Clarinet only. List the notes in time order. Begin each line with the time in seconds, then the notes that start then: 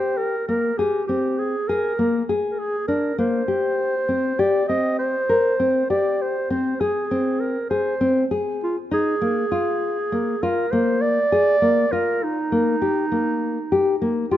Already playing: C5
0.17 A#4
0.47 A#4
0.77 G4
1.08 G4
1.39 G#4
1.68 A#4
2.51 A#4
2.59 G#4
2.88 A#4
3.19 C5
4.40 D5
4.68 D#5
4.99 C5
5.90 D5
6.22 C5
6.51 C5
6.81 G#4
7.40 A#4
7.70 C5
8.64 F4
8.93 G#4
10.42 A#4
10.72 C5
11.01 D5
11.92 A#4
12.23 D#4
14.32 F4